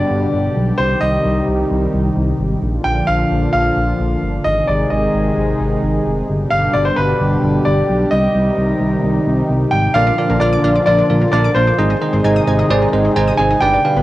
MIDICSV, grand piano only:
0, 0, Header, 1, 2, 480
1, 0, Start_track
1, 0, Tempo, 458015
1, 832, Time_signature, 4, 2, 24, 8
1, 14699, End_track
2, 0, Start_track
2, 0, Title_t, "Grand piano"
2, 0, Program_c, 0, 0
2, 0, Note_on_c, 0, 74, 95
2, 814, Note_on_c, 0, 72, 100
2, 852, Note_off_c, 0, 74, 0
2, 1055, Note_on_c, 0, 75, 98
2, 1071, Note_off_c, 0, 72, 0
2, 1509, Note_off_c, 0, 75, 0
2, 2975, Note_on_c, 0, 79, 102
2, 3216, Note_on_c, 0, 77, 101
2, 3231, Note_off_c, 0, 79, 0
2, 3680, Note_off_c, 0, 77, 0
2, 3695, Note_on_c, 0, 77, 103
2, 4622, Note_off_c, 0, 77, 0
2, 4657, Note_on_c, 0, 75, 98
2, 4899, Note_on_c, 0, 74, 83
2, 4912, Note_off_c, 0, 75, 0
2, 5138, Note_on_c, 0, 75, 83
2, 5153, Note_off_c, 0, 74, 0
2, 6303, Note_off_c, 0, 75, 0
2, 6816, Note_on_c, 0, 77, 101
2, 7047, Note_off_c, 0, 77, 0
2, 7056, Note_on_c, 0, 74, 100
2, 7175, Note_off_c, 0, 74, 0
2, 7177, Note_on_c, 0, 72, 88
2, 7296, Note_on_c, 0, 71, 98
2, 7308, Note_off_c, 0, 72, 0
2, 8016, Note_on_c, 0, 74, 96
2, 8046, Note_off_c, 0, 71, 0
2, 8498, Note_on_c, 0, 75, 96
2, 8519, Note_off_c, 0, 74, 0
2, 9903, Note_off_c, 0, 75, 0
2, 10177, Note_on_c, 0, 79, 103
2, 10418, Note_on_c, 0, 77, 116
2, 10432, Note_off_c, 0, 79, 0
2, 10899, Note_on_c, 0, 74, 97
2, 10920, Note_off_c, 0, 77, 0
2, 11363, Note_off_c, 0, 74, 0
2, 11379, Note_on_c, 0, 74, 100
2, 11844, Note_off_c, 0, 74, 0
2, 11859, Note_on_c, 0, 74, 96
2, 12099, Note_on_c, 0, 72, 98
2, 12113, Note_off_c, 0, 74, 0
2, 13024, Note_off_c, 0, 72, 0
2, 14016, Note_on_c, 0, 80, 102
2, 14257, Note_on_c, 0, 79, 121
2, 14271, Note_off_c, 0, 80, 0
2, 14699, Note_off_c, 0, 79, 0
2, 14699, End_track
0, 0, End_of_file